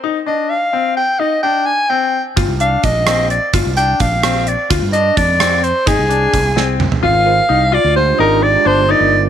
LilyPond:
<<
  \new Staff \with { instrumentName = "Soprano saxophone" } { \time 5/8 \key c \minor \tempo 4 = 129 r8 ees''8 f''4 g''8 | ees''8 g''8 aes''8 g''8. r16 | r8 f''8 ees''4 d''8 | r8 g''8 f''4 d''8 |
r8 ees''8 d''4 c''8 | aes'2 r8 | f''4. d''8 c''8 | bes'8 d''8 c''8 d''8. r16 | }
  \new Staff \with { instrumentName = "Tine electric piano" } { \time 5/8 \key c \minor r2 r8 | r2 r8 | r2 r8 | r2 r8 |
r2 r8 | r2 r8 | r8 <aes f' bes' c''>8 r4 <aes d' f' g'>8 | <aes d' f' g'>4. <aes d' f' bes'>4 | }
  \new Staff \with { instrumentName = "Grand piano" } { \time 5/8 \key c \minor ees'8 d'4 c'4 | ees'8 d'4 c'4 | f'8 d'4 c'4 | f'8 d'4 c'4 |
f'8 d'4 c'4 | ees'8 d'4 c'4 | f'4 ees'8 f'4 | ees'4 d'8 ees'4 | }
  \new Staff \with { instrumentName = "Fretless electric bass" } { \clef bass \time 5/8 \key c \minor r2 r8 | r2 r8 | g,,16 c,8. bes,,4. | g,,16 c,8. bes,,4. |
d,16 g,8. f,4. | aes,,16 c,8. c,4. | aes,,4 c,8. d,8. | aes,,4 g,,8. g,,8. | }
  \new DrumStaff \with { instrumentName = "Drums" } \drummode { \time 5/8 r4. r4 | r4. r4 | <hh bd>8 hh8 <hh bd>8 <hh ss>8 hh8 | <hh bd>8 hh8 <hh bd>8 <hh ss>8 hh8 |
<hh bd>8 hh8 <hh bd>8 <hh ss>8 hh8 | <hh bd>8 hh8 <hh bd>8 sn8 toml16 tomfh16 | r4. r4 | r4. r4 | }
>>